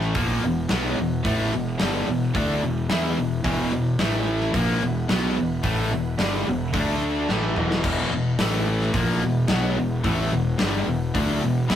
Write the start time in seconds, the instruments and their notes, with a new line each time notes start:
Already playing: fingered electric bass A1, overdriven electric guitar A2 E3 A3, tonewheel organ A3 E4 B4
0.01 snare
0.15 fingered electric bass A#1, overdriven electric guitar A#2 F3 A#3, tonewheel organ E3 B3 F#4, kick, open hi-hat
0.44 fingered electric bass E1, overdriven electric guitar E2 B2
0.69 fingered electric bass B1, overdriven electric guitar B2 F#3 B3, snare, open hi-hat
0.99 fingered electric bass E1, overdriven electric guitar E2 B2
1.25 fingered electric bass A1, overdriven electric guitar A2 E3 A3, kick, open hi-hat
1.54 fingered electric bass E1, overdriven electric guitar E2 B2
1.78 fingered electric bass G1, overdriven electric guitar G2, distorted electric guitar D3 G3, snare, open hi-hat
1.82 overdriven electric guitar D3 G3
2.08 fingered electric bass E1, overdriven electric guitar E2 B2
2.35 fingered electric bass D2, overdriven electric guitar D3 A3 D4, tonewheel organ E4, kick, open hi-hat
2.62 fingered electric bass E1, overdriven electric guitar E2 B2
2.89 fingered electric bass E2, overdriven electric guitar E3 B3 E4, snare, open hi-hat
3.17 fingered electric bass E1, overdriven electric guitar E2 B2
3.44 fingered electric bass E1, overdriven electric guitar E2 B2 E3, kick, open hi-hat
3.73 fingered electric bass E1, overdriven electric guitar E2 B2
3.99 fingered electric bass A1, overdriven electric guitar A2 E3 A3, tonewheel organ A3 B4, snare, open hi-hat
4.41 snare
4.54 fingered electric bass A#1, overdriven electric guitar A#2 F3 A#3, tonewheel organ F#5, kick, open hi-hat
4.82 fingered electric bass E1, overdriven electric guitar E2 B2
5.08 fingered electric bass B1, overdriven electric guitar B2 F#3 B3, snare, open hi-hat
5.36 fingered electric bass E1, overdriven electric guitar E2 B2
5.63 fingered electric bass A1, overdriven electric guitar A2 E3 A3, kick, open hi-hat
5.91 fingered electric bass E1, overdriven electric guitar E2 B2
6.19 fingered electric bass G1, overdriven electric guitar G2 D3 G3, snare, open hi-hat
6.47 fingered electric bass E1, overdriven electric guitar E2 B2
6.73 fingered electric bass D2, overdriven electric guitar D3 A3 D4, tonewheel organ D4 A4 E5, kick, open hi-hat
7.28 fingered electric bass A1, overdriven electric guitar A2 E3 A3, tonewheel organ E4 B4 F#5, snare
7.56 fingered electric bass E1, overdriven electric guitar E2 B2 E3, mid tom
7.71 snare
7.84 fingered electric bass E1, overdriven electric guitar E2 B2 E3, tonewheel organ E4 B4 F#5, kick, crash
8.12 fingered electric bass E1, overdriven electric guitar E2 B2
8.39 fingered electric bass A1, overdriven electric guitar A2 E3 A3, tonewheel organ A3, snare, open hi-hat
8.81 snare
8.94 fingered electric bass A#1, overdriven electric guitar A#2 F3 A#3, tonewheel organ E3 B3 F#4, kick, open hi-hat
9.22 fingered electric bass E1, overdriven electric guitar E2 B2
9.48 fingered electric bass B1, overdriven electric guitar B2 F#3 B3, snare, open hi-hat
9.76 fingered electric bass E1, overdriven electric guitar E2 B2
10.04 fingered electric bass A1, overdriven electric guitar A2 E3 A3, kick, open hi-hat
10.32 fingered electric bass E1, overdriven electric guitar E2 B2
10.58 fingered electric bass G1, overdriven electric guitar G2 D3 G3, snare, open hi-hat
10.87 fingered electric bass E1, overdriven electric guitar E2 B2
11.14 fingered electric bass D2, overdriven electric guitar D3 A3 D4, kick, open hi-hat
11.41 fingered electric bass E1, overdriven electric guitar E2 B2
11.68 fingered electric bass E2, overdriven electric guitar E3 B3 E4, snare, open hi-hat